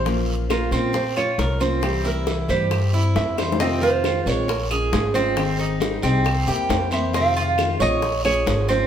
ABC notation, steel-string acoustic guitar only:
X:1
M:4/4
L:1/8
Q:1/4=136
K:Fm
V:1 name="Steel-string acoustic guitar"
[F,B,DFc]2 [B,DFc] [B,DFc] z [DF]2 [B,DFc] | [C,=E,G,C=E]2 [E,G,CE] [E,G,CE] z [G,CE]2 [E,G,CE] | [C,E,A,CF]2 [E,A,CF] [E,A,CF] z [A,DF]2 [A,DF] | [E,CEA]2 [G,CEA] [G,CEA] z [B,C=E]2 [=E,B,CE] |
[C,E,A,CF]2 [E,A,CF] [E,A,CF] z [A,DF]2 [A,DF] |]